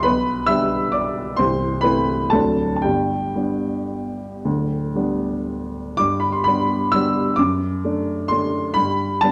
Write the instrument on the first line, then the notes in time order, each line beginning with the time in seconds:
upright piano
0.03 B1 B2 B4 B5
0.47 G3 D4 G4 E5 E6
0.92 D5 D6
1.36 C1 C2 C5 C6
1.81 A3 C4 E4 B4 B5
2.30 D1 D2 F#3 C4 A4 A5
2.34 D4
2.76 A5
2.82 G1 G2 G4 G5
3.35 G3 B3 D4
4.45 D1 D2
4.95 G3 B3 D4
5.97 G2 D6
6.20 B5
6.32 C6
6.44 G3 B3 D4 B5
6.92 G3 B3 D4 E6
7.36 F#2 D6
7.84 A3 D4
8.28 A3 D4 C6
8.74 G2 B5
9.21 G3 B3 D4 A5